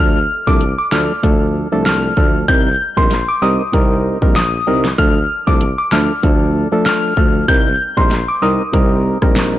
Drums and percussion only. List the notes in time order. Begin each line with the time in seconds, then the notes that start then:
0.47 kick
0.61 closed hi-hat
0.92 snare
1.23 kick, closed hi-hat
1.86 snare, closed hi-hat
2.17 kick
2.48 kick, closed hi-hat
2.97 kick
3.11 snare, closed hi-hat
3.73 kick, closed hi-hat
4.22 kick
4.36 snare, closed hi-hat
4.85 snare
4.98 kick, closed hi-hat
5.47 kick
5.61 closed hi-hat
5.92 snare
6.23 kick, closed hi-hat
6.86 snare, closed hi-hat
7.17 kick
7.48 kick, closed hi-hat
7.97 kick
8.11 snare, closed hi-hat
8.73 kick, closed hi-hat
9.22 kick, cross-stick
9.36 snare, closed hi-hat